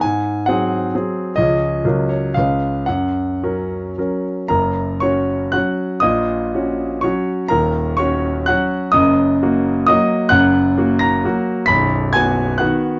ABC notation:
X:1
M:3/4
L:1/8
Q:1/4=126
K:F#
V:1 name="Grand piano"
g2 f2 z2 | d3 c e2 | f4- f z | [Aa]2 [cc']2 [ff']2 |
[dd']4 [cc']2 | [Aa]2 [cc']2 [ff']2 | [dd']4 [dd']2 | [K:Gb] [gg']3 [bb']3 |
[=b=b']2 [aa']2 [^f^f'] z |]
V:2 name="Grand piano"
G,,2 [F,^B,G]2 [F,B,G]2 | [C,,E,CG]2 [C,,F,CA]2 [C,,G,CB]2 | F,,2 [F,CA]2 [F,CA]2 | [F,,,F,,]2 [CF]2 [F,CF]2 |
[A,,,A,,]2 [CF]2 [F,CF]2 | [D,,,D,,]2 [CF]2 [F,CF]2 | [F,,,F,,]2 [A,F]2 [F,A,F]2 | [K:Gb] [G,,,G,,]2 [B,G]2 [G,B,G]2 |
[=B,,,,=B,,,]2 [=B,^F]2 [^D,B,F]2 |]